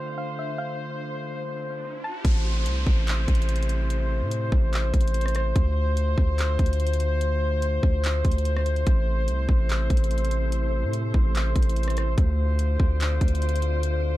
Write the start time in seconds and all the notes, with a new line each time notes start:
Already playing: D3 A3 D4 F4 C5 F5
0.18 F5
0.39 E5
0.58 F5, riser
2.04 A5
2.24 A1 C3 A3 E4 C5, kick, closed hi-hat, downlifter
2.66 C2, closed hi-hat
2.87 A1, kick
3.08 clap, closed hi-hat
3.28 A1, kick, closed hi-hat
3.35 closed hi-hat
3.42 closed hi-hat
3.49 closed hi-hat
3.56 closed hi-hat
3.63 closed hi-hat
3.69 closed hi-hat
3.90 closed hi-hat
4.21 A2
4.31 closed hi-hat
4.52 A1, kick
4.73 clap, closed hi-hat
4.94 A1, kick, closed hi-hat
5.01 closed hi-hat
5.08 closed hi-hat
5.14 closed hi-hat
5.21 closed hi-hat
5.26 cross-stick, closed hi-hat
5.35 cross-stick, closed hi-hat
5.56 D2 D3 F4, kick, closed hi-hat
5.97 closed hi-hat
6.18 D2, kick
6.39 clap, closed hi-hat
6.59 D2, kick, closed hi-hat
6.66 closed hi-hat
6.73 closed hi-hat
6.80 closed hi-hat
6.87 closed hi-hat
6.93 closed hi-hat
7.00 closed hi-hat
7.21 closed hi-hat
7.62 closed hi-hat
7.83 D2, kick
8.04 clap, closed hi-hat
8.25 D2, kick, closed hi-hat
8.31 closed hi-hat
8.38 closed hi-hat
8.45 closed hi-hat
8.56 cross-stick
8.66 closed hi-hat
8.76 closed hi-hat
8.87 A1 C3 A3 E4 C5, kick, closed hi-hat
9.28 C2, closed hi-hat
9.49 A1, kick
9.70 clap, closed hi-hat
9.90 A1, kick, closed hi-hat
9.97 closed hi-hat
10.04 closed hi-hat
10.11 closed hi-hat
10.18 closed hi-hat
10.25 closed hi-hat
10.31 closed hi-hat
10.52 closed hi-hat
10.83 A2
10.93 closed hi-hat
11.14 A1, kick
11.35 clap, closed hi-hat
11.56 A1, kick, closed hi-hat
11.63 closed hi-hat
11.70 closed hi-hat
11.76 closed hi-hat
11.83 closed hi-hat
11.88 cross-stick, closed hi-hat
11.97 cross-stick, closed hi-hat
12.18 D2 D3 A3 C4 F4 C5 D5, kick, closed hi-hat
12.59 closed hi-hat
12.80 D2, kick
13.01 clap, closed hi-hat
13.21 D2, kick, closed hi-hat
13.28 closed hi-hat
13.35 closed hi-hat
13.42 closed hi-hat
13.49 closed hi-hat
13.56 closed hi-hat
13.62 closed hi-hat
13.83 closed hi-hat